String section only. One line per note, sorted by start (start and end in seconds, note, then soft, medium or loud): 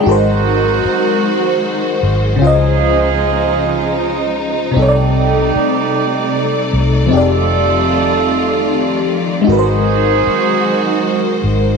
0.00 2.37 D#3 medium
0.06 2.39 F#3 medium
0.06 4.72 G#3 medium
0.06 2.39 F#4 medium
0.06 4.72 C5 medium
2.41 4.74 C#3 medium
2.41 4.74 F3 medium
2.41 7.08 D#4 medium
4.76 7.09 C3 medium
4.76 9.43 G3 medium
4.76 9.43 A3 medium
4.76 9.43 D5 medium
7.11 11.77 D#3 medium
7.11 9.44 F4 medium
9.46 11.77 F#3 medium
9.46 11.77 G#3 medium
9.46 11.77 F#4 medium
9.46 11.77 C5 medium